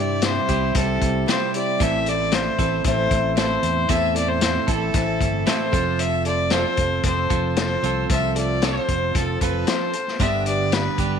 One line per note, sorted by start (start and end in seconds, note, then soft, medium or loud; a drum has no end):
0.00 0.38 G2 medium
0.00 0.47 C3 medium
0.00 0.48 G3 loud
0.00 0.22 C4 soft
0.00 0.50 C4 medium
0.00 0.23 E4 soft
0.00 0.49 E4 medium
0.00 0.23 G4 medium
0.00 0.48 G4 loud
0.00 0.27 D5 medium
0.21 0.48 G3 medium
0.21 0.49 C4 medium
0.21 0.50 E4 medium
0.21 0.47 G4 medium
0.21 snare loud
0.21 closed hi-hat medium
0.25 0.77 C5 loud
0.49 0.71 C2 medium
0.49 1.27 C3 medium
0.49 1.27 G3 medium
0.49 0.75 C4 soft
0.49 0.75 E4 soft
0.49 0.75 G4 soft
0.49 kick medium
0.49 closed hi-hat medium
0.75 0.98 C2 medium
0.75 1.28 C3 medium
0.75 1.25 G3 medium
0.75 1.28 C4 medium
0.75 1.29 E4 medium
0.75 1.29 G4 medium
0.75 1.25 A4 medium
0.75 kick loud
0.75 closed hi-hat medium
1.01 1.24 C2 medium
1.01 kick medium
1.01 closed hi-hat medium
1.26 1.79 C3 medium
1.26 1.53 G3 medium
1.26 1.54 C4 medium
1.26 1.55 E4 medium
1.26 1.53 C5 medium
1.26 snare loud
1.26 closed hi-hat medium
1.30 1.53 G4 medium
1.54 1.81 C4 soft
1.54 1.81 E4 soft
1.54 1.80 G4 soft
1.54 1.84 D5 medium
1.54 closed hi-hat medium
1.80 2.48 A1 loud
1.80 2.07 A2 medium
1.80 2.07 E3 medium
1.80 2.08 A3 medium
1.80 2.08 C4 medium
1.80 2.08 E4 medium
1.80 2.07 A4 medium
1.80 2.10 E5 loud
1.80 kick loud
1.80 closed hi-hat medium
2.06 2.34 E4 soft
2.06 2.33 A4 medium
2.06 2.36 D5 loud
2.06 closed hi-hat medium
2.10 2.31 A3 soft
2.10 2.33 C4 soft
2.31 2.59 A3 medium
2.31 2.60 C4 medium
2.31 2.60 E4 medium
2.31 2.85 C5 loud
2.31 snare loud
2.31 closed hi-hat medium
2.37 2.59 A4 medium
2.59 2.81 A1 medium
2.59 3.35 A2 medium
2.59 3.36 E3 medium
2.59 2.86 C4 soft
2.59 2.86 E4 soft
2.59 2.86 A4 soft
2.59 kick medium
2.59 closed hi-hat medium
2.64 2.85 A3 soft
2.84 3.07 A1 medium
2.84 3.38 A2 medium
2.84 3.38 E3 medium
2.84 3.37 A3 medium
2.84 3.38 C4 medium
2.84 3.38 E4 medium
2.84 3.40 A4 medium
2.84 3.34 C5 loud
2.84 kick loud
2.84 closed hi-hat medium
3.11 3.56 A1 medium
3.11 kick medium
3.11 closed hi-hat medium
3.36 3.87 A2 medium
3.36 3.87 E3 medium
3.36 3.90 A3 medium
3.36 3.90 C4 medium
3.36 3.89 E4 medium
3.36 3.91 C5 loud
3.36 snare loud
3.36 closed hi-hat medium
3.40 3.91 A4 medium
3.63 3.86 E2 medium
3.63 closed hi-hat medium
3.89 4.57 E2 medium
3.89 4.16 A2 medium
3.89 4.16 E3 medium
3.89 4.16 A3 medium
3.89 4.16 C4 medium
3.89 4.15 E4 medium
3.89 4.13 A4 medium
3.89 4.16 E5 loud
3.89 kick loud
3.89 closed hi-hat medium
4.15 4.40 A3 soft
4.15 4.41 C4 soft
4.15 4.42 E4 medium
4.15 4.42 A4 medium
4.15 4.30 D5 medium
4.15 closed hi-hat medium
4.28 4.70 C5 loud
4.41 4.95 A3 medium
4.41 4.95 C4 medium
4.41 4.94 E4 medium
4.41 4.96 A4 medium
4.41 snare loud
4.41 closed hi-hat medium
4.67 4.91 A1 medium
4.67 5.45 A2 medium
4.67 5.45 E3 medium
4.67 5.47 C4 medium
4.67 5.46 E4 medium
4.67 5.48 A4 medium
4.67 5.46 A4 medium
4.67 kick medium
4.67 closed hi-hat medium
4.94 5.17 A1 medium
4.94 5.47 A2 medium
4.94 5.47 E3 medium
4.94 5.45 A3 medium
4.94 5.47 C4 medium
4.94 5.47 E4 medium
4.94 5.49 A4 medium
4.94 kick loud
4.94 closed hi-hat medium
5.21 5.43 G1 medium
5.21 kick medium
5.21 closed hi-hat medium
5.46 5.71 A2 medium
5.46 5.72 E3 medium
5.46 5.73 A3 medium
5.46 5.73 C4 medium
5.46 5.72 E4 medium
5.46 5.71 A4 medium
5.46 6.01 C5 medium
5.46 snare loud
5.46 closed hi-hat medium
5.72 6.63 F1 medium
5.72 6.26 F3 medium
5.72 6.26 C4 medium
5.72 6.26 F4 medium
5.72 6.24 A4 medium
5.72 kick loud
5.72 closed hi-hat medium
5.99 6.26 E5 loud
5.99 closed hi-hat medium
6.25 6.53 F4 soft
6.25 6.52 A4 medium
6.25 6.54 D5 medium
6.25 closed hi-hat medium
6.29 6.51 C4 soft
6.50 6.78 F3 medium
6.50 6.79 C4 medium
6.50 6.79 F4 medium
6.50 7.05 C5 loud
6.50 snare loud
6.50 closed hi-hat medium
6.55 6.77 A4 medium
6.77 7.01 F1 medium
6.77 7.04 F4 soft
6.77 7.05 A4 soft
6.77 kick medium
6.77 closed hi-hat medium
6.81 7.03 C4 soft
7.03 7.27 F1 medium
7.03 7.55 F3 medium
7.03 7.57 C4 medium
7.03 7.57 F4 medium
7.03 7.58 A4 medium
7.03 7.54 C5 medium
7.03 kick loud
7.03 closed hi-hat medium
7.30 7.76 F1 medium
7.30 7.82 F3 medium
7.30 7.82 C4 medium
7.30 7.82 F4 medium
7.30 7.81 A4 medium
7.30 kick medium
7.30 closed hi-hat medium
7.56 8.08 F3 medium
7.56 8.09 C4 medium
7.56 8.10 F4 medium
7.56 8.11 A4 medium
7.56 8.07 C5 medium
7.56 snare loud
7.56 closed hi-hat medium
7.83 8.06 C2 medium
7.83 8.60 F3 medium
7.83 8.61 C4 medium
7.83 8.61 F4 loud
7.83 8.62 A4 loud
7.83 closed hi-hat medium
8.10 8.77 C2 medium
8.10 8.36 F3 medium
8.10 8.36 C4 medium
8.10 8.37 F4 medium
8.10 8.35 A4 medium
8.10 8.35 E5 loud
8.10 kick loud
8.10 closed hi-hat medium
8.36 8.62 C4 soft
8.36 8.63 F4 medium
8.36 8.62 A4 medium
8.36 8.65 D5 medium
8.36 closed hi-hat medium
8.62 9.14 F3 medium
8.62 9.15 C4 medium
8.62 9.16 F4 medium
8.62 9.16 A4 medium
8.62 9.17 C5 loud
8.62 snare loud
8.62 closed hi-hat medium
8.88 9.11 F1 medium
8.88 kick medium
8.88 closed hi-hat medium
9.15 9.37 F1 medium
9.15 9.66 F3 medium
9.15 9.67 C4 medium
9.15 9.67 F4 medium
9.15 9.41 A4 medium
9.15 9.68 A4 medium
9.15 kick loud
9.15 closed hi-hat medium
9.41 9.64 F1 medium
9.41 9.93 F3 medium
9.41 9.93 C4 medium
9.41 9.93 F4 medium
9.41 9.92 A4 medium
9.41 9.70 B4 medium
9.41 kick medium
9.41 closed hi-hat medium
9.67 9.93 F3 medium
9.67 9.94 C4 medium
9.67 9.94 F4 medium
9.67 9.93 A4 medium
9.67 10.20 C5 medium
9.67 snare loud
9.67 closed hi-hat medium
9.93 10.21 C4 soft
9.93 10.21 F4 soft
9.93 10.20 A4 medium
9.93 closed hi-hat medium
10.08 snare soft
10.19 10.87 G1 loud
10.19 10.45 G2 medium
10.19 10.46 D3 medium
10.19 10.46 G3 medium
10.19 10.47 B3 medium
10.19 10.46 D4 medium
10.19 10.45 G4 medium
10.19 10.45 E5 loud
10.19 kick loud
10.19 closed hi-hat medium
10.46 10.71 G3 soft
10.46 10.71 B3 soft
10.46 10.73 D4 medium
10.46 10.72 G4 medium
10.46 10.74 D5 medium
10.46 closed hi-hat medium
10.72 11.20 G3 medium
10.72 11.20 B3 medium
10.72 11.20 D4 medium
10.72 11.20 G4 medium
10.72 11.20 B4 medium
10.72 snare loud
10.72 closed hi-hat medium
10.98 11.20 G1 medium
10.98 11.20 G2 medium
10.98 11.20 D3 medium
10.98 11.20 G3 medium
10.98 11.20 B3 medium
10.98 11.20 D4 medium
10.98 11.20 G4 medium
10.98 kick medium
10.98 closed hi-hat medium